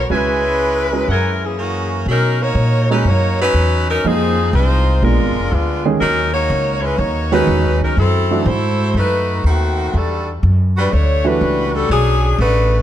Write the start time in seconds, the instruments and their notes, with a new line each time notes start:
0.10 upright bass C#2, upright piano G#3 C#4 F#4 B4, trumpet section B4 C#5 E5 G#5
0.14 saxophone section G#3 C#4 E4 B4
0.92 upright piano G#3 C#4 F#4 A#4
1.08 upright bass F#2, saxophone section G#3 C#4 E4 A#4, trumpet section A#4 E5 F#5 G#5
1.45 saxophone section E3 A#3 C#4 G#4
1.58 saxophone section E3 A#3 C#4 F#4
2.06 upright bass B2, saxophone section F#3 C#4 D#4 A#4
2.41 saxophone section A#3 D#4 F#4 C#5
2.55 upright bass A#2
2.90 saxophone section F#3 C#4 D#4 B4, upright piano G#3 C#4 F#4 A#4
3.04 upright bass F#2, saxophone section A#3 D#4 F#4 C#5
3.42 saxophone section F#3 C#4 D#4 B4
3.54 upright bass E2
3.89 saxophone section F#3 C#4 D#4 A#4
4.04 upright bass F2, upright piano F3 A#3 D#4 G#4, saxophone section F3 C4 D#4 G#4
4.53 upright bass C2, saxophone section G#3 D#4 F4 C5
5.03 upright bass A#1, saxophone section G#3 D4 F4 A#4, upright piano G#3 B3 D4 F4
5.20 upright bass G#1
5.36 upright bass F1
5.52 upright bass D2, saxophone section G#3 B3 D4 F4
5.85 upright piano D#3 G#3 C#4 G#4
6.00 upright bass D#2, saxophone section F#3 C#4 D#4 A#4
6.33 saxophone section A#3 D#4 F#4 C#5
6.50 upright bass C#2
6.82 saxophone section G#3 C#4 E4 B4
6.97 upright bass D#2, saxophone section A#3 D#4 F#4 C#5
7.32 upright piano D#3 G#3 C#4 F#4, saxophone section F#3 C#4 D#4 B4
7.47 upright bass E2
7.65 upright bass D#2
7.81 upright bass C#2, saxophone section F#3 C#4 D#4 A#4
7.97 upright bass F#2, saxophone section F#3 C4 E4 A4
8.30 upright piano E3 A3 D4 F#4
8.46 upright bass G#2, saxophone section E4 F#4 A4 C5
8.94 upright bass F#2, saxophone section A3 D#4 F#4 B4
9.44 upright bass D#2, saxophone section D#3 A3 C4 F#4
9.94 upright bass E2, saxophone section G3 D4 F#4 A4
10.43 upright bass F#2
10.77 saxophone section G3 D4 F#4 B4
10.93 upright bass D2, saxophone section A3 D4 F#4 C#5
11.24 upright piano E3 A3 D4 F#4, saxophone section G3 D4 F#4 B4
11.41 upright bass C#2
11.74 saxophone section G3 D4 F#4 A4
11.89 upright bass B1, saxophone section F#3 C#4 D4 G#4
12.38 upright bass A1, saxophone section A3 D4 F#4 B4